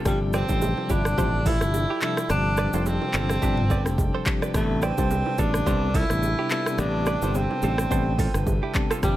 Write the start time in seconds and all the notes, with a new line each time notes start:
Already playing: A4 G5
0.05 G1 C3 F3 G3 D4 D5, kick, cross-stick, low conga, shaker
0.33 C4 B4 D5, cross-stick, shaker
0.49 A1 C3 F3 G3 D4 A4 C5, kick, low bongo, shaker
0.62 high bongo, shaker
0.78 low bongo
0.89 G1 C3 F3 G3 D4 E4 G4, kick, high bongo, shaker
1.05 cross-stick, shaker
1.17 A1 C3 F3 G3 D4 G4 C5, kick, low conga, shaker
1.46 E4 F4 A4, kick, open hi-hat, low bongo, low conga, shaker
1.60 G1 C3 F3 G3 D4, cross-stick, shaker
1.74 high bongo, shaker
1.90 E4 G4
2.01 C3 F3 G3 D4 E4 F4 A4, clap, shaker
2.17 cross-stick, shaker
2.30 G1 C3 F3 G3 D4, cross-stick, low conga, shaker
2.57 B4 D5, cross-stick, shaker
2.73 F1 C3 F3 G3 D4 A4 C5, low bongo, shaker
2.86 C4, high bongo, shaker
3.02 low bongo
3.13 G1 C3 F3 G3 D4 F4 A4, clap, high bongo, shaker
3.29 cross-stick, high bongo, shaker
3.41 G1 C3 F3 G3 D4 G4, kick, low conga, shaker
3.57 mid tom
3.70 B4 D5, kick, low bongo, low conga, shaker
3.85 F1 C3 F3 G3 D4, cross-stick, shaker
3.98 kick, high bongo, shaker
4.15 A4 C5
4.26 C3 F3 G3 D4, kick, clap, shaker
4.42 B4 D5, cross-stick, shaker
4.54 A1 C3 G3 A3 B3 D4 B4, kick, cross-stick, low conga, shaker
4.82 C4 B4 D5, cross-stick, shaker
4.97 C2 C3 G3 D4 A4 B4 C5, kick, low bongo, shaker
5.11 high bongo, shaker
5.26 low bongo
5.38 A1 C3 G3 B3 D4 F4 A4, kick, high bongo, shaker
5.54 cross-stick, shaker
5.66 C2 C3 G3 B3 D4 A4 C5, kick, low conga, shaker
5.94 E4 F4 A4, kick, open hi-hat, low bongo, low conga, shaker
6.09 A1 C3 G3 B3 D4, cross-stick, shaker
6.23 high bongo, shaker
6.39 E4 G4
6.50 C3 G3 B3 D4 E4 F4 A4, clap, shaker
6.66 cross-stick, shaker
6.78 A1 C3 G3 B3 D4, cross-stick, low conga, shaker
7.06 B4 D5, cross-stick, shaker
7.22 G1 C3 G3 B3 D4 A4 C5, low bongo, shaker
7.35 C4, high bongo, shaker
7.51 low bongo
7.62 A1 C3 G3 B3 D4 F4 A4, high bongo, shaker
7.78 cross-stick, shaker
7.90 A1 C3 G3 B3 D4 A4 C5, kick, low conga, shaker
8.19 F4 A4, kick, open hi-hat, low bongo, low conga, shaker
8.34 G1 C3 G3 D4 B4, cross-stick, shaker
8.47 kick, high bongo, shaker
8.63 E4 G4
8.74 C3 G3 B3 D4, kick, clap, shaker
8.91 F4 A4, cross-stick, shaker
9.03 G1 C3 F3 G3 D4 C5 D5 G5, kick, cross-stick, low conga, shaker